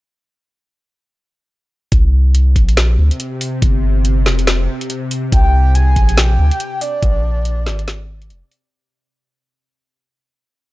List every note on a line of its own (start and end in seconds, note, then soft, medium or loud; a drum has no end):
1.92 2.57 C2 loud
1.92 8.78 C3 medium
1.92 kick loud
1.92 closed hi-hat medium
2.35 closed hi-hat medium
2.56 2.97 A#1 medium
2.56 kick medium
2.56 closed hi-hat medium
2.69 closed hi-hat medium
2.77 snare loud
2.77 closed hi-hat medium
2.99 3.10 D2 medium
3.11 closed hi-hat medium
3.20 closed hi-hat medium
3.41 open hi-hat loud
3.62 4.28 G1 loud
3.62 kick loud
3.62 closed hi-hat medium
4.05 closed hi-hat medium
4.26 4.68 F1 medium
4.26 snare medium
4.26 closed hi-hat medium
4.39 closed hi-hat medium
4.47 snare loud
4.47 closed hi-hat medium
4.81 closed hi-hat medium
4.90 closed hi-hat medium
5.11 open hi-hat medium
5.32 5.98 C2 loud
5.32 5.76 G5 loud
5.32 kick loud
5.32 closed hi-hat medium
5.75 6.19 G#5 loud
5.75 closed hi-hat medium
5.96 6.38 A#1 medium
5.96 kick medium
5.96 closed hi-hat medium
6.09 closed hi-hat medium
6.17 6.83 G5 loud
6.17 snare loud
6.17 closed hi-hat medium
6.39 6.50 D2 medium
6.51 closed hi-hat medium
6.60 closed hi-hat medium
6.81 8.30 D5 loud
6.81 open hi-hat medium
7.03 7.68 A#1 loud
7.03 kick loud
7.03 closed hi-hat medium
7.45 closed hi-hat medium
7.66 8.32 G#1 medium
7.66 snare medium
7.66 closed hi-hat medium
7.79 closed hi-hat medium
7.88 snare loud
7.88 closed hi-hat medium
8.22 closed hi-hat medium
8.30 8.42 F1 medium
8.30 closed hi-hat medium
8.51 open hi-hat medium